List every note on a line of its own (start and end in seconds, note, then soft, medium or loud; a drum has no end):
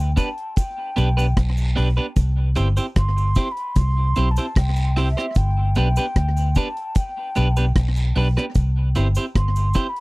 0.00 0.16 D2 medium
0.00 0.13 G5 medium
0.16 0.28 B3 medium
0.16 0.28 D4 medium
0.16 0.28 G4 medium
0.16 0.28 B4 medium
0.16 0.58 A5 medium
0.16 kick medium
0.16 closed hi-hat medium
0.16 cabasa medium
0.38 closed hi-hat soft
0.56 1.37 G5 medium
0.56 kick loud
0.56 closed hi-hat medium
0.56 cabasa medium
0.96 1.35 B1 medium
0.96 1.08 B3 medium
0.96 1.08 D4 medium
0.96 1.08 G4 medium
0.96 1.08 B4 medium
0.96 closed hi-hat medium
0.96 cabasa medium
1.17 1.26 B3 medium
1.17 1.26 D4 medium
1.17 1.25 G4 medium
1.17 1.25 B4 medium
1.17 closed hi-hat soft
1.17 cabasa medium
1.37 1.75 B1 medium
1.37 kick loud
1.37 cross-stick loud
1.37 closed hi-hat medium
1.37 long guiro medium
1.57 cabasa medium
1.76 1.97 B1 medium
1.76 1.87 B3 medium
1.76 1.87 D4 medium
1.76 1.88 G4 medium
1.76 1.88 B4 medium
1.76 cross-stick medium
1.76 open hi-hat medium
1.97 2.06 B3 medium
1.97 2.05 D4 medium
1.97 2.05 G4 medium
1.97 2.05 B4 medium
1.97 closed hi-hat soft
2.16 2.55 C2 loud
2.16 kick loud
2.16 closed hi-hat medium
2.16 cabasa medium
2.55 2.77 G1 medium
2.55 2.67 C4 medium
2.55 2.67 E4 medium
2.55 2.67 G4 medium
2.55 2.68 C5 medium
2.55 closed hi-hat medium
2.55 cabasa soft
2.77 2.86 C4 medium
2.77 2.85 E4 medium
2.77 2.85 G4 medium
2.77 2.85 C5 medium
2.77 closed hi-hat medium
2.77 cabasa medium
2.96 3.35 G1 medium
2.96 3.53 C6 loud
2.96 kick loud
2.96 cross-stick loud
2.96 closed hi-hat loud
3.18 cabasa medium
3.35 3.47 C4 medium
3.35 3.47 E4 medium
3.35 3.48 G4 medium
3.35 3.48 C5 medium
3.35 kick medium
3.35 closed hi-hat medium
3.35 cabasa medium
3.52 3.79 B5 medium
3.57 closed hi-hat medium
3.76 4.15 C2 medium
3.76 4.33 C6 loud
3.76 kick loud
3.76 closed hi-hat medium
3.76 cabasa medium
4.16 4.37 B1 medium
4.16 4.27 C4 medium
4.16 4.27 E4 medium
4.16 4.28 G4 medium
4.16 4.28 C5 medium
4.16 closed hi-hat medium
4.16 cabasa medium
4.31 4.59 A5 medium
4.36 4.46 C4 medium
4.36 4.46 E4 medium
4.36 4.45 G4 medium
4.36 4.45 C5 medium
4.36 closed hi-hat soft
4.36 cabasa medium
4.55 5.14 C2 medium
4.55 5.10 G5 medium
4.55 kick loud
4.55 cross-stick loud
4.55 closed hi-hat medium
4.55 long guiro medium
4.76 cabasa soft
4.96 5.07 C4 medium
4.96 5.07 E4 medium
4.96 5.08 G4 medium
4.96 5.08 C5 medium
4.96 cross-stick medium
4.96 open hi-hat medium
5.10 5.39 E5 medium
5.17 5.26 C4 soft
5.17 5.25 E4 medium
5.17 5.25 G4 medium
5.17 5.25 C5 medium
5.17 cross-stick medium
5.17 closed hi-hat soft
5.35 5.74 G1 loud
5.35 5.77 G5 medium
5.35 kick loud
5.35 closed hi-hat medium
5.35 cabasa medium
5.75 5.97 B1 medium
5.75 5.87 B3 medium
5.75 5.87 D4 medium
5.75 5.87 G4 medium
5.75 5.88 B4 loud
5.75 6.58 G5 medium
5.75 closed hi-hat medium
5.75 cabasa medium
5.96 6.06 B3 medium
5.96 6.05 D4 medium
5.96 6.05 G4 medium
5.96 6.05 B4 medium
5.96 closed hi-hat medium
5.96 cabasa medium
6.16 6.54 D2 medium
6.16 kick loud
6.16 cross-stick loud
6.16 closed hi-hat medium
6.37 cabasa medium
6.55 6.67 B3 medium
6.55 6.67 D4 medium
6.55 6.67 G4 medium
6.55 6.67 B4 medium
6.55 6.99 A5 medium
6.55 kick medium
6.55 closed hi-hat medium
6.55 cabasa medium
6.77 closed hi-hat medium
6.95 7.76 G5 medium
6.95 kick loud
6.95 closed hi-hat medium
6.95 cabasa medium
7.35 7.75 B1 medium
7.35 7.47 B3 medium
7.35 7.47 D4 medium
7.35 7.47 G4 medium
7.35 7.47 B4 loud
7.35 closed hi-hat medium
7.35 cabasa medium
7.56 7.65 B3 medium
7.56 7.65 D4 medium
7.56 7.65 G4 medium
7.56 7.64 B4 medium
7.56 closed hi-hat soft
7.56 cabasa medium
7.76 8.14 B1 medium
7.76 kick loud
7.76 cross-stick loud
7.76 closed hi-hat medium
7.76 long guiro medium
7.96 cabasa medium
8.16 8.36 B1 medium
8.16 8.26 B3 medium
8.16 8.27 D4 medium
8.16 8.27 G4 medium
8.16 8.27 B4 medium
8.16 open hi-hat medium
8.37 8.45 B3 medium
8.37 8.45 D4 medium
8.37 8.45 G4 medium
8.37 8.44 B4 medium
8.37 cross-stick medium
8.37 closed hi-hat soft
8.55 8.94 C2 medium
8.55 kick loud
8.55 closed hi-hat medium
8.55 cabasa medium
8.95 9.16 G1 medium
8.95 9.06 C4 medium
8.95 9.07 E4 loud
8.95 9.07 G4 medium
8.95 9.07 C5 medium
8.95 closed hi-hat medium
8.95 cabasa soft
9.15 9.25 C4 medium
9.15 9.25 E4 medium
9.15 9.24 G4 medium
9.15 9.24 C5 medium
9.15 closed hi-hat medium
9.15 cabasa medium
9.35 9.74 G1 medium
9.35 9.91 C6 loud
9.35 kick loud
9.35 cross-stick loud
9.35 closed hi-hat medium
9.56 cabasa medium
9.74 9.86 C4 medium
9.74 9.86 E4 medium
9.74 9.86 G4 medium
9.74 9.87 C5 medium
9.74 kick medium
9.74 closed hi-hat medium
9.74 cabasa medium
9.89 10.00 B5 medium
9.96 closed hi-hat medium